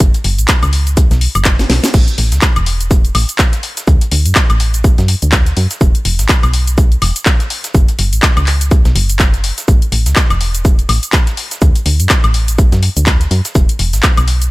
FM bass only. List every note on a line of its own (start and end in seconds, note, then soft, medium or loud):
0.00 0.11 F#1 loud
0.25 0.40 F#1 medium
0.39 0.46 A1 loud
0.63 1.10 C#2 medium
1.11 1.28 B1 loud
1.35 1.65 F#1 medium
1.70 1.80 B1 loud
1.94 2.04 A1 loud
2.18 2.34 A1 medium
2.32 2.40 C#2 loud
2.57 3.11 E1 medium
3.15 3.25 A1 medium
3.87 3.98 D2 loud
4.12 4.27 D2 medium
4.26 4.33 F#2 loud
4.50 4.98 A1 medium
4.98 5.15 F#2 loud
5.23 5.53 D2 medium
5.57 5.67 F#2 medium
5.81 5.91 E1 loud
6.05 6.21 E1 medium
6.19 6.27 G#1 loud
6.43 6.98 B1 medium
7.02 7.12 E1 medium
7.74 7.85 F#1 loud
7.99 8.14 F#1 medium
8.13 8.20 A1 loud
8.37 8.85 C#2 medium
8.86 8.95 B1 medium
8.95 9.52 F#1 loud
9.68 9.79 A1 loud
9.92 10.08 A1 medium
10.06 10.14 C#2 loud
10.30 10.85 E1 medium
10.89 10.99 A1 medium
11.62 11.72 D2 loud
11.86 12.01 D2 medium
12.00 12.07 F#2 loud
12.24 12.72 A1 medium
12.72 12.89 F#2 loud
12.97 13.27 D2 medium
13.31 13.41 F#2 loud
13.55 13.66 E1 loud
13.79 13.95 E1 medium
13.93 14.01 G#1 loud
14.18 14.51 B1 medium